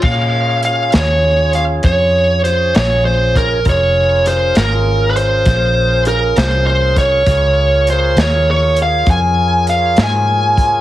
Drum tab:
CC |x-----------|------------|------------|
HH |--xx-xx-xx-x|x-xx-xx-xx-x|x-xx-xx-xx-x|
SD |---o-----o--|---o--o--o--|---o-----o--|
BD |o-----o----o|o-----o----o|o-----o----o|